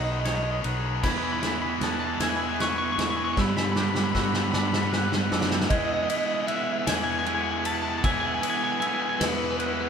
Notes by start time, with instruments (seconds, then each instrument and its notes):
Already playing: fingered electric bass B1, clean electric guitar B3 D#4 F#4, string section D#4 C#5 B5, glockenspiel F#6
0.02 overdriven electric guitar B2 D#3, clean electric guitar D#5
0.10 overdriven electric guitar B2 D#3, clean electric guitar D#5
0.18 overdriven electric guitar B2 D#3, clean electric guitar D#5
0.25 overdriven electric guitar B2 D#3, clean electric guitar C#5 D#5, glockenspiel G#6, snare, ride
0.34 overdriven electric guitar B2 D#3, clean electric guitar D#5
0.41 overdriven electric guitar B2 D#3, clean electric guitar D#5
0.49 overdriven electric guitar B2 D#3, clean electric guitar D#5
0.57 overdriven electric guitar B2 D#3
0.64 fingered electric bass B1, overdriven electric guitar B2 D#3, clean electric guitar D#4, glockenspiel F#6, ride
0.73 overdriven electric guitar B2 D#3
0.80 overdriven electric guitar B2 D#3
0.88 overdriven electric guitar B2 D#3
0.96 overdriven electric guitar B2 D#3
1.02 fingered electric bass E2, overdriven electric guitar E3 G#3 B3, clean electric guitar E3 B5, string section G#3 E5, glockenspiel G#6, kick, snare, crash
1.10 overdriven electric guitar E3 G#3 B3, clean electric guitar B5
1.17 overdriven electric guitar E3 G#3 B3, clean electric guitar B5
1.24 overdriven electric guitar E3 G#3 B3, clean electric guitar B5
1.33 overdriven electric guitar E3 G#3 B3, clean electric guitar B5
1.40 overdriven electric guitar E3 G#3 B3, clean electric guitar E4 B5, snare, ride
1.47 overdriven electric guitar E3 G#3 B3, clean electric guitar B5
1.55 overdriven electric guitar E3 G#3 B3, clean electric guitar B5
1.62 overdriven electric guitar E3 B3, clean electric guitar B5
1.66 overdriven electric guitar E3 G#3, clean electric guitar B5
1.73 overdriven electric guitar E3 G#3 B3
1.80 fingered electric bass E2, overdriven electric guitar E3 G#3 B3, clean electric guitar A5, glockenspiel F#6, snare, ride
1.89 overdriven electric guitar E3 G#3 B3, clean electric guitar A5
1.96 overdriven electric guitar E3 G#3 B3, clean electric guitar A5
2.04 overdriven electric guitar E3 G#3 B3, clean electric guitar A5
2.12 overdriven electric guitar E3 G#3 B3, clean electric guitar A5
2.19 fingered electric bass E2, overdriven electric guitar E3 G#3 B3, clean electric guitar E4, glockenspiel G#6, snare, ride
2.23 clean electric guitar G#5
2.27 overdriven electric guitar E3 G#3 B3, clean electric guitar G#5
2.35 overdriven electric guitar E3 G#3 B3, clean electric guitar G#5
2.43 overdriven electric guitar E3 G#3 B3, clean electric guitar G#5
2.50 overdriven electric guitar E3 G#3 B3, clean electric guitar G#5
2.58 overdriven electric guitar E3 G#3 B3, clean electric guitar B4 C#6, glockenspiel G#6, snare, ride
2.65 overdriven electric guitar E3 G#3 B3, clean electric guitar C#6
2.74 overdriven electric guitar E3 G#3 B3, clean electric guitar C#6
2.82 overdriven electric guitar E3 G#3 B3, clean electric guitar C#6
2.89 overdriven electric guitar E3 G#3 B3, clean electric guitar C#6
2.96 fingered electric bass E2, overdriven electric guitar E3 G#3 B3, clean electric guitar E4, snare, ride
3.01 overdriven electric guitar E3, clean electric guitar C#6
3.05 overdriven electric guitar G#3 B3
3.10 overdriven electric guitar E3 G#3 B3, clean electric guitar C#6
3.17 overdriven electric guitar B3, clean electric guitar C#6
3.21 overdriven electric guitar E3 G#3, clean electric guitar C#6
3.28 overdriven electric guitar E3 G#3 B3
3.33 overdriven electric guitar G3, clean electric guitar G3 C#6, snare
3.37 overdriven electric guitar G2 D3 B3, fingered electric bass G2, string section F#5 B5, clean electric guitar B5, glockenspiel E6, kick
3.44 overdriven electric guitar G2 D3 G3 B3
3.50 overdriven electric guitar D3 G3 B3, clean electric guitar B5
3.57 overdriven electric guitar G2 G3, clean electric guitar B5, snare
3.61 overdriven electric guitar D3 B3, clean electric guitar B5
3.68 overdriven electric guitar G2 D3 G3 B3, clean electric guitar B5
3.76 overdriven electric guitar G2 D3 G3 B3, clean electric guitar D4, glockenspiel D6, snare
3.81 overdriven electric guitar G2 D3 G3 B3, clean electric guitar B5
3.90 overdriven electric guitar G2 D3 G3 B3, clean electric guitar B5
3.95 overdriven electric guitar G3, clean electric guitar B5, snare
4.00 overdriven electric guitar G2 D3 B3
4.04 overdriven electric guitar G2 G3 B3, clean electric guitar B5
4.08 overdriven electric guitar D3, clean electric guitar B5
4.14 fingered electric bass G2, overdriven electric guitar G2 D3 G3 B3, clean electric guitar F#4, glockenspiel E6, kick, snare
4.20 overdriven electric guitar G2 D3 G3 B3, clean electric guitar B5
4.28 overdriven electric guitar G2 D3 G3 B3, clean electric guitar B5
4.34 overdriven electric guitar G3 B3, clean electric guitar B5, snare
4.38 overdriven electric guitar G2 D3
4.44 overdriven electric guitar G2 D3 G3 B3, clean electric guitar B5
4.52 overdriven electric guitar G2 D3 G3 B3, fingered electric bass G2, clean electric guitar D4 B5, snare
4.59 overdriven electric guitar G2 D3 G3 B3, clean electric guitar B5
4.68 overdriven electric guitar G2 D3 G3 B3, clean electric guitar B5
4.73 overdriven electric guitar G2 G3 B3, clean electric guitar B5, snare
4.78 overdriven electric guitar D3
4.82 overdriven electric guitar G2 D3 G3 B3, clean electric guitar B5
4.92 overdriven electric guitar G2 D3 G3 B3, clean electric guitar B4, glockenspiel F#6, snare
4.99 overdriven electric guitar G2 D3 G3 B3
5.08 overdriven electric guitar G2 D3 G3 B3
5.12 overdriven electric guitar D3 G3 B3, snare
5.16 overdriven electric guitar G2
5.23 overdriven electric guitar G2 D3 G3 B3
5.31 fingered electric bass F#2, overdriven electric guitar G2 D3 G3 B3, clean electric guitar D4, glockenspiel E6, snare
5.39 overdriven electric guitar G2 D3 G3 B3, snare
5.47 overdriven electric guitar G2 D3 G3 B3
5.51 overdriven electric guitar B3, snare
5.55 overdriven electric guitar G2 D3 G3
5.61 overdriven electric guitar G2 D3 G3 B3, snare
5.69 fingered electric bass E2, overdriven electric guitar E3 G#3 B3 E4, string section E4 B4, clean electric guitar D#5, glockenspiel G#6, kick, ride
5.73 overdriven electric guitar E4
5.78 clean electric guitar D#5
5.85 clean electric guitar D#5
5.94 clean electric guitar D#5
6.03 clean electric guitar D#5
6.07 overdriven electric guitar G#3 B3 E4, clean electric guitar D#5, ride
6.12 overdriven electric guitar G#3
6.18 clean electric guitar D#5
6.26 clean electric guitar D#5
6.34 clean electric guitar D#5
6.42 clean electric guitar D#5
6.46 overdriven electric guitar E3 G#3 B3 E4, clean electric guitar E5, glockenspiel F#6, ride
6.56 clean electric guitar E5
6.63 clean electric guitar E5
6.73 clean electric guitar E5
6.79 clean electric guitar E5
6.85 fingered electric bass E2, overdriven electric guitar E3 G#3 B3 E4, clean electric guitar G#5, glockenspiel G#6, snare, ride
6.95 clean electric guitar G#5
7.04 clean electric guitar G#5
7.12 clean electric guitar G#5
7.19 clean electric guitar G#5
7.24 overdriven electric guitar E3 G#3 B3 E4, clean electric guitar G#5, glockenspiel G#6, ride
7.28 overdriven electric guitar B3 E4
7.35 clean electric guitar G#5
7.43 clean electric guitar G#5
7.51 clean electric guitar G#5
7.59 overdriven electric guitar E4, clean electric guitar G#5
7.64 overdriven electric guitar G#3 B3 E4, clean electric guitar A5, ride
7.74 clean electric guitar A5
7.82 clean electric guitar A5
7.90 clean electric guitar A5
7.98 clean electric guitar A5
8.02 fingered electric bass E2, overdriven electric guitar E3 G#3 B3 E4, clean electric guitar G#5, glockenspiel E6, kick, ride
8.12 clean electric guitar G#5
8.20 clean electric guitar G#5
8.27 clean electric guitar G#5
8.34 clean electric guitar G#5
8.41 overdriven electric guitar G#3 B3 E4, clean electric guitar G#5, glockenspiel D#6, ride
8.45 overdriven electric guitar G#3
8.50 clean electric guitar G#5
8.57 clean electric guitar G#5
8.64 clean electric guitar G#5
8.72 clean electric guitar G#5
8.79 overdriven electric guitar E3 G#3 B3 E4, clean electric guitar G#5, glockenspiel E6, ride
8.87 clean electric guitar G#5
8.95 clean electric guitar G#5
9.02 clean electric guitar G#5
9.09 clean electric guitar G#5
9.17 overdriven electric guitar B3 E4, clean electric guitar B4 G#5
9.21 fingered electric bass E2, overdriven electric guitar E3 G#3 B3 E4, snare, ride
9.28 clean electric guitar B4
9.35 clean electric guitar B4
9.43 clean electric guitar B4
9.51 clean electric guitar B4
9.57 overdriven electric guitar E3 G#3 B3 E4, clean electric guitar B4, glockenspiel F#6, ride
9.61 overdriven electric guitar B3 E4
9.66 clean electric guitar B4
9.73 clean electric guitar B4
9.81 clean electric guitar B4